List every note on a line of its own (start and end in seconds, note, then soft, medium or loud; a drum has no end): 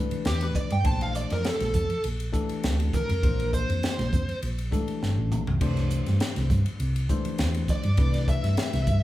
0.00 0.69 E3 medium
0.00 0.69 A3 medium
0.00 0.70 D4 medium
0.00 0.70 G4 medium
0.00 0.70 B4 medium
0.11 muted fingered electric bass stroke soft
0.11 ride medium
0.11 low conga medium
0.25 0.52 E2 medium
0.25 0.41 G4 medium
0.25 snare medium
0.25 ride medium
0.41 0.56 B4 medium
0.41 ride medium
0.55 0.71 D5 medium
0.55 muted fingered electric bass stroke soft
0.55 kick medium
0.55 hi-hat pedal medium
0.55 low conga medium
0.70 0.83 G2 medium
0.70 0.85 G5 medium
0.70 ride medium
0.70 high conga medium
0.83 1.25 A#1 loud
0.83 1.83 E3 medium
0.83 1.83 A3 medium
0.83 1.83 D4 medium
0.83 1.83 G4 medium
0.83 1.83 C5 medium
0.83 1.01 A5 medium
0.83 kick loud
0.83 ride medium
1.01 1.15 F5 medium
1.01 ride medium
1.15 1.31 D5 medium
1.15 hi-hat pedal medium
1.30 1.43 F2 medium
1.30 1.45 A#4 medium
1.30 snare soft
1.30 ride medium
1.44 2.02 A4 medium
1.44 snare loud
1.44 ride medium
1.60 1.73 A#1 medium
1.60 snare soft
1.60 ride medium
1.60 high conga medium
1.74 1.88 F2 medium
1.74 kick medium
1.74 snare soft
1.74 hi-hat pedal medium
1.74 low conga medium
1.90 muted fingered electric bass stroke soft
1.90 ride soft
2.04 2.31 A#1 medium
2.04 ride medium
2.20 ride medium
2.32 3.08 E3 medium
2.32 3.08 A3 medium
2.32 3.08 D4 medium
2.32 3.08 G4 medium
2.32 3.08 A4 medium
2.32 kick medium
2.32 hi-hat pedal medium
2.49 muted fingered electric bass stroke soft
2.49 ride medium
2.63 2.90 D2 medium
2.63 snare loud
2.63 ride medium
2.80 ride medium
2.93 3.49 A#4 medium
2.93 kick medium
2.93 snare soft
2.93 hi-hat pedal medium
2.93 low conga medium
3.09 3.22 F2 medium
3.09 ride medium
3.09 high conga medium
3.23 3.63 A#1 loud
3.23 4.21 E3 medium
3.23 4.21 A#3 medium
3.23 4.22 D4 medium
3.23 4.22 G4 medium
3.23 4.22 C5 medium
3.23 kick loud
3.23 ride medium
3.40 ride medium
3.53 4.39 C5 medium
3.53 kick medium
3.53 hi-hat pedal medium
3.69 3.81 F2 medium
3.69 ride medium
3.83 snare loud
3.83 ride medium
3.99 4.11 A#1 medium
3.99 snare soft
3.99 ride medium
3.99 high conga medium
4.12 4.26 F2 medium
4.12 kick medium
4.12 hi-hat pedal medium
4.12 high conga medium
4.12 low conga medium
4.29 muted fingered electric bass stroke soft
4.29 ride soft
4.43 4.68 A#1 medium
4.43 ride medium
4.58 ride medium
4.72 5.46 E3 medium
4.72 5.46 A3 medium
4.72 5.46 D4 medium
4.72 5.46 G4 medium
4.72 5.46 A4 medium
4.72 kick medium
4.72 hi-hat pedal medium
4.72 high conga medium
4.88 muted fingered electric bass stroke soft
4.88 ride soft
5.03 5.16 G1 medium
5.03 snare medium
5.18 5.30 A1 medium
5.32 5.46 A#1 medium
5.32 hi-hat pedal medium
5.32 mid tom medium
5.32 low conga medium
5.47 5.60 C2 medium
5.47 floor tom medium
5.47 high conga medium
5.61 6.01 C2 loud
5.61 6.59 E3 medium
5.61 6.59 A3 medium
5.61 6.60 D4 medium
5.61 6.60 G4 medium
5.61 6.60 C5 medium
5.61 kick loud
5.61 crash medium
5.61 ride medium
5.77 snare soft
5.77 ride soft
5.90 hi-hat pedal medium
6.06 6.19 G2 medium
6.06 snare soft
6.06 ride medium
6.20 snare loud
6.20 ride medium
6.36 6.49 C2 medium
6.36 snare soft
6.36 ride medium
6.36 high conga medium
6.50 6.64 G2 medium
6.50 kick medium
6.50 snare soft
6.50 hi-hat pedal medium
6.50 high conga medium
6.50 low conga medium
6.66 muted fingered electric bass stroke soft
6.66 ride medium
6.80 7.06 C2 medium
6.80 ride medium
6.96 ride medium
7.09 7.84 E3 medium
7.09 7.84 A3 medium
7.09 7.84 D4 medium
7.09 7.84 G4 medium
7.09 7.84 C5 medium
7.09 kick medium
7.09 hi-hat pedal medium
7.09 high conga medium
7.25 muted fingered electric bass stroke soft
7.25 ride medium
7.25 low conga medium
7.38 7.65 E2 medium
7.38 snare loud
7.38 ride medium
7.54 ride medium
7.68 8.25 D5 medium
7.68 muted fingered electric bass stroke soft
7.68 kick medium
7.68 snare soft
7.68 hi-hat pedal medium
7.68 low conga medium
7.83 7.97 G2 medium
7.83 ride medium
7.83 high conga medium
7.97 8.38 C2 loud
7.97 8.96 E3 medium
7.97 8.97 A3 medium
7.97 8.97 D4 medium
7.97 8.97 G4 medium
7.97 8.97 B4 medium
7.97 kick loud
7.97 ride medium
8.14 snare soft
8.14 ride medium
8.28 9.03 E5 medium
8.28 kick medium
8.28 hi-hat pedal medium
8.44 8.56 G2 medium
8.44 snare soft
8.44 ride medium
8.57 snare loud
8.57 ride medium
8.73 8.86 C2 medium
8.73 snare soft
8.73 ride medium
8.73 high conga medium
8.87 9.01 G2 medium
8.87 kick medium
8.87 hi-hat pedal medium
8.87 high conga medium
8.87 low conga medium